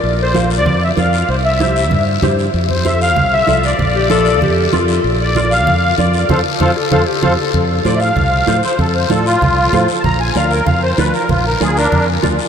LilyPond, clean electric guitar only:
\new Staff \with { instrumentName = "Clean electric guitar" } { \time 4/4 \key f \major \tempo 4 = 192 r4 <f' bes' f''>8 r4. <f' bes' d''>8 r8 | r4 <e' g' c''>8 r4. <e' g' c''>8 r8 | r4 <f' a' c''>8 r4. <f' a' d''>8 r8 | r4 <f' bes' d''>8 r4. <f' bes' d''>8 r8 |
r4 <f' bes' d''>8 r4. <f' bes' d''>8 r8 | <f' a' c''>8 r8 <f' a' c''>8 r8 <f' a' c''>8 r8 <f' a' c''>8 r8 | r4 <f' a' c''>8 r4. <f' a' c''>8 r8 | r4 <f' a' d''>8 r4. <f' a' c''>8 r8 |
r4 <f' bes' d''>8 r4. <f' bes' d''>8 r8 | r4 <f' bes' d''>8 r4. <f' bes' d''>8 r8 | }